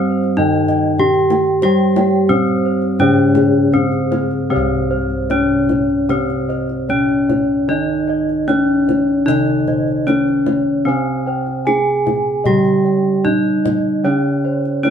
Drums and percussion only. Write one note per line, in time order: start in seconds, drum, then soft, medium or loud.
0.23 kendang slap soft
0.53 kendang slap soft
0.68 kendang low medium
0.84 kendang slap soft
0.98 kendang low medium
1.15 kendang slap soft
1.30 kendang high medium
1.47 kendang slap soft
1.62 kendang low medium
1.79 kendang slap soft
1.96 kendang high medium
2.13 kendang slap soft
2.30 kendang low medium
2.47 kendang slap soft
2.82 kendang slap soft
2.99 kendang high medium
3.18 kendang slap soft
3.35 kendang high medium
3.35 kendang low medium
3.54 kendang slap soft
3.72 kendang low medium
3.92 kendang slap soft
4.12 kendang high medium
4.31 kendang slap soft
5.10 kendang slap soft
5.30 kendang slap soft
5.30 kendang high medium
5.69 kendang slap soft
5.69 kendang high soft
5.69 kendang low medium
5.89 kendang slap soft
6.09 kendang low medium
6.30 kendang slap soft
6.50 kendang slap soft
6.69 kendang slap soft
6.89 kendang low medium
7.09 kendang slap soft
7.30 kendang high medium
7.30 kendang low medium
8.29 kendang slap soft
8.49 kendang slap soft
8.49 kendang high medium
8.89 kendang slap soft
8.89 kendang high medium
8.89 kendang low medium
9.08 kendang slap soft
9.28 kendang low medium
9.48 kendang slap soft
9.67 kendang slap soft
9.67 kendang low medium
9.88 kendang slap soft
10.08 kendang high medium
10.28 kendang slap soft
10.46 kendang high medium
10.46 kendang low medium
11.47 kendang slap soft
11.67 kendang slap soft
11.67 kendang high medium
12.07 kendang slap soft
12.07 kendang high medium
12.07 kendang low medium
12.27 kendang slap soft
12.45 kendang low medium
12.65 kendang slap soft
12.86 kendang slap soft
13.25 kendang low medium
13.46 kendang slap soft
13.66 kendang high medium
13.66 kendang low medium
14.65 kendang slap soft
14.85 kendang slap soft
14.85 kendang high medium